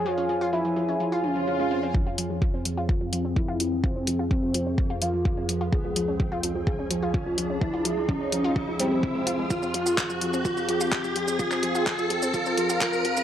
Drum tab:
HH |----------------|--x---x---x---x-|--x---x---x---x-|--x---x---x---x-|
SH |----------------|----------------|----------------|----------------|
CP |----------------|----------------|----------------|----------------|
BD |----------------|o---o---o---o---|o---o---o---o---|o---o---o---o---|

HH |--x---x---x---x-|--x---x---x---x-|--x---x---x---x-|
SH |----------------|xx-xxx-xxx-xxx-x|xx-xxx-xxx-xxx-x|
CP |----------------|----x-------x---|-x--x-------x---|
BD |o---o---o---o---|o---o---o---o---|o---o---o---o---|